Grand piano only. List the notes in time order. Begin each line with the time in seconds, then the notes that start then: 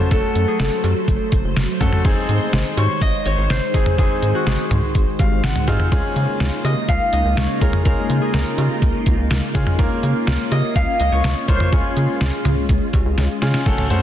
0.11 A3 C#4 F#4 A4
1.81 A3 C#4 F#4 A4
2.05 G#3 C4 D#4 G#4
3.74 G#3 C4 D#4 G#4
3.98 G#3 C4 D#4 G#4
5.19 F5
5.43 F#5
5.68 G#3 C4 D#4 F4 G#5
5.92 G#3 C#4 F4 G#4
7.61 G#3 C#4 F4 G#4
7.85 G#3 C#4 F4 G#4
9.55 G#3 C#4 F4 G#4
9.79 A#3 C#4 F4 A#4
11.48 A#3 C#4 F4 C5
11.72 G#3 C#4 F4 G#4
13.42 G#3 C#4 F4 G#4
13.66 A3 C#4 F#4 A4
13.90 A3 C#4 F#4 C5